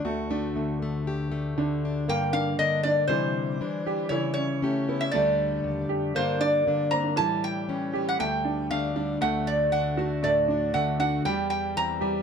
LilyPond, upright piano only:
\new Staff \with { instrumentName = "Upright piano" } { \time 4/4 \key d \phrygian \tempo 4 = 118 a8 d'8 a2 d'4 | \key g \minor bes8 d'8 bes8 d'8 e4. g'8 | e8 cis'8 a8 b16 cis'16 a4. g'8 | bes8 d'8 bes8 c'16 d'16 e4. g'8 |
a8 d'8 a8 d'8 a4. fis'8 | a8 d'8 a8 d'8 g4. g'8 | }